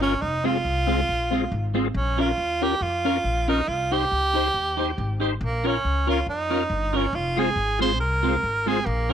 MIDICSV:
0, 0, Header, 1, 6, 480
1, 0, Start_track
1, 0, Tempo, 432588
1, 232, Time_signature, 4, 2, 24, 8
1, 10131, End_track
2, 0, Start_track
2, 0, Title_t, "Tonewheel organ"
2, 0, Program_c, 0, 16
2, 9, Note_on_c, 0, 61, 87
2, 15, Note_on_c, 0, 65, 75
2, 21, Note_on_c, 0, 70, 102
2, 158, Note_off_c, 0, 61, 0
2, 161, Note_off_c, 0, 65, 0
2, 164, Note_off_c, 0, 70, 0
2, 486, Note_on_c, 0, 60, 94
2, 494, Note_on_c, 0, 65, 84
2, 499, Note_on_c, 0, 68, 99
2, 636, Note_off_c, 0, 60, 0
2, 640, Note_off_c, 0, 65, 0
2, 643, Note_off_c, 0, 68, 0
2, 965, Note_on_c, 0, 60, 91
2, 969, Note_on_c, 0, 65, 80
2, 978, Note_on_c, 0, 68, 95
2, 1116, Note_off_c, 0, 60, 0
2, 1118, Note_off_c, 0, 65, 0
2, 1122, Note_off_c, 0, 68, 0
2, 1450, Note_on_c, 0, 60, 87
2, 1458, Note_on_c, 0, 65, 89
2, 1465, Note_on_c, 0, 68, 95
2, 1599, Note_off_c, 0, 60, 0
2, 1603, Note_off_c, 0, 65, 0
2, 1607, Note_off_c, 0, 68, 0
2, 1938, Note_on_c, 0, 60, 89
2, 1941, Note_on_c, 0, 65, 82
2, 1949, Note_on_c, 0, 68, 102
2, 2083, Note_off_c, 0, 60, 0
2, 2085, Note_off_c, 0, 65, 0
2, 2088, Note_off_c, 0, 68, 0
2, 2423, Note_on_c, 0, 61, 90
2, 2426, Note_on_c, 0, 65, 84
2, 2434, Note_on_c, 0, 70, 95
2, 2566, Note_off_c, 0, 61, 0
2, 2568, Note_off_c, 0, 65, 0
2, 2571, Note_off_c, 0, 70, 0
2, 2905, Note_on_c, 0, 61, 80
2, 2913, Note_on_c, 0, 65, 85
2, 2918, Note_on_c, 0, 70, 92
2, 3047, Note_off_c, 0, 61, 0
2, 3051, Note_off_c, 0, 65, 0
2, 3054, Note_off_c, 0, 70, 0
2, 3382, Note_on_c, 0, 61, 90
2, 3389, Note_on_c, 0, 65, 87
2, 3397, Note_on_c, 0, 70, 105
2, 3526, Note_off_c, 0, 61, 0
2, 3529, Note_off_c, 0, 65, 0
2, 3533, Note_off_c, 0, 70, 0
2, 3863, Note_on_c, 0, 61, 90
2, 3867, Note_on_c, 0, 65, 86
2, 3874, Note_on_c, 0, 70, 102
2, 4006, Note_off_c, 0, 61, 0
2, 4009, Note_off_c, 0, 65, 0
2, 4012, Note_off_c, 0, 70, 0
2, 4345, Note_on_c, 0, 63, 88
2, 4350, Note_on_c, 0, 67, 89
2, 4356, Note_on_c, 0, 72, 98
2, 4487, Note_off_c, 0, 63, 0
2, 4490, Note_off_c, 0, 67, 0
2, 4493, Note_off_c, 0, 72, 0
2, 4825, Note_on_c, 0, 63, 86
2, 4835, Note_on_c, 0, 67, 78
2, 4839, Note_on_c, 0, 72, 93
2, 4967, Note_off_c, 0, 63, 0
2, 4973, Note_off_c, 0, 67, 0
2, 4974, Note_off_c, 0, 72, 0
2, 5308, Note_on_c, 0, 63, 89
2, 5314, Note_on_c, 0, 67, 79
2, 5317, Note_on_c, 0, 72, 89
2, 5449, Note_off_c, 0, 63, 0
2, 5452, Note_off_c, 0, 67, 0
2, 5453, Note_off_c, 0, 72, 0
2, 5773, Note_on_c, 0, 63, 84
2, 5783, Note_on_c, 0, 67, 83
2, 5790, Note_on_c, 0, 72, 105
2, 5921, Note_off_c, 0, 63, 0
2, 5926, Note_off_c, 0, 67, 0
2, 5930, Note_off_c, 0, 72, 0
2, 6260, Note_on_c, 0, 65, 91
2, 6264, Note_on_c, 0, 70, 86
2, 6269, Note_on_c, 0, 73, 97
2, 6405, Note_off_c, 0, 65, 0
2, 6407, Note_off_c, 0, 70, 0
2, 6410, Note_off_c, 0, 73, 0
2, 6732, Note_on_c, 0, 65, 89
2, 6738, Note_on_c, 0, 70, 79
2, 6744, Note_on_c, 0, 73, 94
2, 6881, Note_off_c, 0, 65, 0
2, 6884, Note_off_c, 0, 70, 0
2, 6887, Note_off_c, 0, 73, 0
2, 7209, Note_on_c, 0, 65, 86
2, 7213, Note_on_c, 0, 70, 81
2, 7221, Note_on_c, 0, 73, 100
2, 7359, Note_off_c, 0, 65, 0
2, 7361, Note_off_c, 0, 70, 0
2, 7365, Note_off_c, 0, 73, 0
2, 7684, Note_on_c, 0, 65, 87
2, 7693, Note_on_c, 0, 70, 80
2, 7702, Note_on_c, 0, 73, 98
2, 7836, Note_off_c, 0, 65, 0
2, 7841, Note_off_c, 0, 70, 0
2, 7845, Note_off_c, 0, 73, 0
2, 8168, Note_on_c, 0, 65, 88
2, 8179, Note_on_c, 0, 68, 86
2, 8182, Note_on_c, 0, 72, 105
2, 8318, Note_off_c, 0, 65, 0
2, 8323, Note_off_c, 0, 68, 0
2, 8325, Note_off_c, 0, 72, 0
2, 8643, Note_on_c, 0, 65, 92
2, 8653, Note_on_c, 0, 68, 80
2, 8659, Note_on_c, 0, 72, 94
2, 8795, Note_off_c, 0, 65, 0
2, 8800, Note_off_c, 0, 68, 0
2, 8803, Note_off_c, 0, 72, 0
2, 9128, Note_on_c, 0, 65, 89
2, 9134, Note_on_c, 0, 68, 87
2, 9144, Note_on_c, 0, 72, 100
2, 9277, Note_off_c, 0, 65, 0
2, 9280, Note_off_c, 0, 68, 0
2, 9285, Note_off_c, 0, 72, 0
2, 9609, Note_on_c, 0, 65, 93
2, 9619, Note_on_c, 0, 68, 83
2, 9628, Note_on_c, 0, 72, 100
2, 9758, Note_off_c, 0, 65, 0
2, 9763, Note_off_c, 0, 68, 0
2, 9767, Note_off_c, 0, 72, 0
2, 10091, Note_on_c, 0, 65, 95
2, 10131, Note_off_c, 0, 65, 0
2, 10131, End_track
3, 0, Start_track
3, 0, Title_t, "Clean electric guitar"
3, 0, Program_c, 1, 27
3, 14, Note_on_c, 1, 61, 82
3, 22, Note_on_c, 1, 65, 78
3, 28, Note_on_c, 1, 70, 87
3, 119, Note_off_c, 1, 61, 0
3, 122, Note_off_c, 1, 65, 0
3, 126, Note_off_c, 1, 70, 0
3, 491, Note_on_c, 1, 56, 76
3, 494, Note_on_c, 1, 60, 76
3, 503, Note_on_c, 1, 65, 84
3, 597, Note_off_c, 1, 56, 0
3, 599, Note_off_c, 1, 60, 0
3, 603, Note_off_c, 1, 65, 0
3, 974, Note_on_c, 1, 56, 81
3, 984, Note_on_c, 1, 60, 76
3, 988, Note_on_c, 1, 65, 92
3, 1079, Note_off_c, 1, 56, 0
3, 1084, Note_off_c, 1, 60, 0
3, 1086, Note_off_c, 1, 65, 0
3, 1461, Note_on_c, 1, 56, 74
3, 1469, Note_on_c, 1, 60, 78
3, 1473, Note_on_c, 1, 65, 82
3, 1562, Note_off_c, 1, 56, 0
3, 1567, Note_off_c, 1, 60, 0
3, 1569, Note_off_c, 1, 65, 0
3, 1929, Note_on_c, 1, 56, 74
3, 1941, Note_on_c, 1, 60, 87
3, 1944, Note_on_c, 1, 65, 95
3, 2037, Note_off_c, 1, 56, 0
3, 2043, Note_off_c, 1, 60, 0
3, 2044, Note_off_c, 1, 65, 0
3, 2409, Note_on_c, 1, 61, 81
3, 2417, Note_on_c, 1, 65, 86
3, 2425, Note_on_c, 1, 70, 88
3, 2517, Note_off_c, 1, 61, 0
3, 2521, Note_off_c, 1, 65, 0
3, 2525, Note_off_c, 1, 70, 0
3, 2903, Note_on_c, 1, 61, 80
3, 2905, Note_on_c, 1, 65, 89
3, 2911, Note_on_c, 1, 70, 87
3, 3004, Note_off_c, 1, 61, 0
3, 3005, Note_off_c, 1, 65, 0
3, 3008, Note_off_c, 1, 70, 0
3, 3381, Note_on_c, 1, 61, 76
3, 3387, Note_on_c, 1, 65, 78
3, 3393, Note_on_c, 1, 70, 100
3, 3484, Note_off_c, 1, 61, 0
3, 3486, Note_off_c, 1, 65, 0
3, 3490, Note_off_c, 1, 70, 0
3, 3859, Note_on_c, 1, 61, 80
3, 3867, Note_on_c, 1, 65, 77
3, 3877, Note_on_c, 1, 70, 85
3, 3962, Note_off_c, 1, 61, 0
3, 3967, Note_off_c, 1, 65, 0
3, 3971, Note_off_c, 1, 70, 0
3, 4343, Note_on_c, 1, 63, 76
3, 4349, Note_on_c, 1, 67, 80
3, 4352, Note_on_c, 1, 72, 85
3, 4445, Note_off_c, 1, 63, 0
3, 4448, Note_off_c, 1, 67, 0
3, 4449, Note_off_c, 1, 72, 0
3, 4810, Note_on_c, 1, 63, 72
3, 4822, Note_on_c, 1, 67, 76
3, 4825, Note_on_c, 1, 72, 83
3, 4919, Note_off_c, 1, 63, 0
3, 4924, Note_off_c, 1, 67, 0
3, 4926, Note_off_c, 1, 72, 0
3, 5293, Note_on_c, 1, 63, 82
3, 5294, Note_on_c, 1, 67, 85
3, 5299, Note_on_c, 1, 72, 88
3, 5400, Note_off_c, 1, 63, 0
3, 5401, Note_off_c, 1, 67, 0
3, 5403, Note_off_c, 1, 72, 0
3, 5768, Note_on_c, 1, 63, 76
3, 5775, Note_on_c, 1, 67, 76
3, 5783, Note_on_c, 1, 72, 89
3, 5877, Note_off_c, 1, 63, 0
3, 5881, Note_off_c, 1, 67, 0
3, 5885, Note_off_c, 1, 72, 0
3, 6255, Note_on_c, 1, 61, 72
3, 6262, Note_on_c, 1, 65, 81
3, 6267, Note_on_c, 1, 70, 81
3, 6361, Note_off_c, 1, 61, 0
3, 6364, Note_off_c, 1, 65, 0
3, 6367, Note_off_c, 1, 70, 0
3, 6739, Note_on_c, 1, 61, 73
3, 6748, Note_on_c, 1, 65, 75
3, 6751, Note_on_c, 1, 70, 87
3, 6843, Note_off_c, 1, 61, 0
3, 6847, Note_off_c, 1, 65, 0
3, 6849, Note_off_c, 1, 70, 0
3, 7218, Note_on_c, 1, 61, 82
3, 7223, Note_on_c, 1, 65, 86
3, 7232, Note_on_c, 1, 70, 80
3, 7322, Note_off_c, 1, 61, 0
3, 7324, Note_off_c, 1, 65, 0
3, 7329, Note_off_c, 1, 70, 0
3, 7688, Note_on_c, 1, 61, 74
3, 7690, Note_on_c, 1, 65, 76
3, 7700, Note_on_c, 1, 70, 83
3, 7796, Note_off_c, 1, 61, 0
3, 7798, Note_off_c, 1, 65, 0
3, 7803, Note_off_c, 1, 70, 0
3, 8181, Note_on_c, 1, 56, 81
3, 8190, Note_on_c, 1, 60, 81
3, 8195, Note_on_c, 1, 65, 93
3, 8283, Note_off_c, 1, 56, 0
3, 8287, Note_off_c, 1, 60, 0
3, 8290, Note_off_c, 1, 65, 0
3, 8656, Note_on_c, 1, 56, 78
3, 8663, Note_on_c, 1, 60, 88
3, 8670, Note_on_c, 1, 65, 85
3, 8760, Note_off_c, 1, 56, 0
3, 8763, Note_off_c, 1, 60, 0
3, 8767, Note_off_c, 1, 65, 0
3, 9128, Note_on_c, 1, 56, 85
3, 9137, Note_on_c, 1, 60, 78
3, 9145, Note_on_c, 1, 65, 89
3, 9236, Note_off_c, 1, 56, 0
3, 9240, Note_off_c, 1, 60, 0
3, 9244, Note_off_c, 1, 65, 0
3, 9617, Note_on_c, 1, 56, 84
3, 9619, Note_on_c, 1, 60, 79
3, 9629, Note_on_c, 1, 65, 82
3, 9720, Note_off_c, 1, 56, 0
3, 9721, Note_off_c, 1, 60, 0
3, 9726, Note_off_c, 1, 65, 0
3, 10088, Note_on_c, 1, 61, 82
3, 10095, Note_on_c, 1, 65, 88
3, 10096, Note_on_c, 1, 70, 92
3, 10131, Note_off_c, 1, 61, 0
3, 10131, Note_off_c, 1, 65, 0
3, 10131, Note_off_c, 1, 70, 0
3, 10131, End_track
4, 0, Start_track
4, 0, Title_t, "Tenor saxophone"
4, 0, Program_c, 2, 66
4, 26, Note_on_c, 2, 61, 101
4, 236, Note_on_c, 2, 63, 98
4, 253, Note_off_c, 2, 61, 0
4, 505, Note_on_c, 2, 65, 107
4, 521, Note_off_c, 2, 63, 0
4, 1944, Note_off_c, 2, 65, 0
4, 2167, Note_on_c, 2, 61, 95
4, 2443, Note_on_c, 2, 65, 111
4, 2460, Note_off_c, 2, 61, 0
4, 2918, Note_on_c, 2, 67, 110
4, 2935, Note_off_c, 2, 65, 0
4, 3133, Note_on_c, 2, 65, 99
4, 3150, Note_off_c, 2, 67, 0
4, 3873, Note_on_c, 2, 63, 95
4, 3889, Note_off_c, 2, 65, 0
4, 4084, Note_on_c, 2, 65, 100
4, 4100, Note_off_c, 2, 63, 0
4, 4355, Note_on_c, 2, 67, 114
4, 4372, Note_off_c, 2, 65, 0
4, 5790, Note_off_c, 2, 67, 0
4, 6032, Note_on_c, 2, 58, 84
4, 6293, Note_on_c, 2, 61, 100
4, 6310, Note_off_c, 2, 58, 0
4, 6759, Note_off_c, 2, 61, 0
4, 6765, Note_on_c, 2, 65, 89
4, 6952, Note_off_c, 2, 65, 0
4, 6984, Note_on_c, 2, 63, 91
4, 7724, Note_on_c, 2, 61, 91
4, 7740, Note_off_c, 2, 63, 0
4, 7934, Note_on_c, 2, 65, 92
4, 7951, Note_off_c, 2, 61, 0
4, 8201, Note_on_c, 2, 68, 108
4, 8218, Note_off_c, 2, 65, 0
4, 8665, Note_off_c, 2, 68, 0
4, 8672, Note_on_c, 2, 72, 113
4, 8863, Note_off_c, 2, 72, 0
4, 8879, Note_on_c, 2, 70, 105
4, 9628, Note_on_c, 2, 68, 103
4, 9645, Note_off_c, 2, 70, 0
4, 9830, Note_on_c, 2, 58, 90
4, 9846, Note_off_c, 2, 68, 0
4, 10120, Note_off_c, 2, 58, 0
4, 10131, End_track
5, 0, Start_track
5, 0, Title_t, "Upright bass"
5, 0, Program_c, 3, 32
5, 0, Note_on_c, 3, 31, 97
5, 165, Note_off_c, 3, 31, 0
5, 245, Note_on_c, 3, 29, 100
5, 648, Note_off_c, 3, 29, 0
5, 717, Note_on_c, 3, 36, 95
5, 1123, Note_off_c, 3, 36, 0
5, 1208, Note_on_c, 3, 34, 76
5, 1610, Note_off_c, 3, 34, 0
5, 1682, Note_on_c, 3, 32, 101
5, 2087, Note_off_c, 3, 32, 0
5, 2158, Note_on_c, 3, 34, 106
5, 2565, Note_off_c, 3, 34, 0
5, 2637, Note_on_c, 3, 39, 85
5, 3044, Note_off_c, 3, 39, 0
5, 3116, Note_on_c, 3, 41, 89
5, 3524, Note_off_c, 3, 41, 0
5, 3599, Note_on_c, 3, 34, 90
5, 4005, Note_off_c, 3, 34, 0
5, 4081, Note_on_c, 3, 36, 98
5, 4487, Note_off_c, 3, 36, 0
5, 4566, Note_on_c, 3, 37, 90
5, 4969, Note_off_c, 3, 37, 0
5, 5039, Note_on_c, 3, 39, 78
5, 5446, Note_off_c, 3, 39, 0
5, 5525, Note_on_c, 3, 32, 99
5, 5929, Note_off_c, 3, 32, 0
5, 6000, Note_on_c, 3, 34, 108
5, 6406, Note_off_c, 3, 34, 0
5, 6484, Note_on_c, 3, 37, 80
5, 6888, Note_off_c, 3, 37, 0
5, 6951, Note_on_c, 3, 41, 82
5, 7360, Note_off_c, 3, 41, 0
5, 7430, Note_on_c, 3, 31, 96
5, 7840, Note_off_c, 3, 31, 0
5, 7910, Note_on_c, 3, 29, 99
5, 8319, Note_off_c, 3, 29, 0
5, 8385, Note_on_c, 3, 32, 89
5, 8864, Note_off_c, 3, 32, 0
5, 8864, Note_on_c, 3, 36, 92
5, 9275, Note_off_c, 3, 36, 0
5, 9356, Note_on_c, 3, 32, 84
5, 9762, Note_off_c, 3, 32, 0
5, 9835, Note_on_c, 3, 34, 108
5, 10131, Note_off_c, 3, 34, 0
5, 10131, End_track
6, 0, Start_track
6, 0, Title_t, "Muted clean electric guitar strokes"
6, 1674, Note_on_c, 9, 29, 34
6, 1785, Note_off_c, 9, 29, 0
6, 5519, Note_on_c, 9, 29, 40
6, 5630, Note_off_c, 9, 29, 0
6, 9354, Note_on_c, 9, 29, 40
6, 9465, Note_off_c, 9, 29, 0
6, 10131, End_track
0, 0, End_of_file